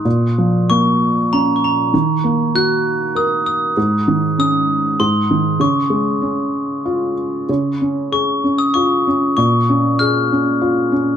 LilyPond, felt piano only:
\new Staff \with { instrumentName = "Felt piano" } { \time 3/4 \key des \major \tempo 4 = 97 bes,8 f8 bes4 des'4 | ees8 bes8 ges'4 bes'4 | aes,8 ees8 des'4 aes,8 ees8 | des8 aes8 des'4 f'4 |
des8 des'8 aes'8 des'8 f'8 des'8 | bes,8 des'8 aes'8 des'8 f'8 des'8 | }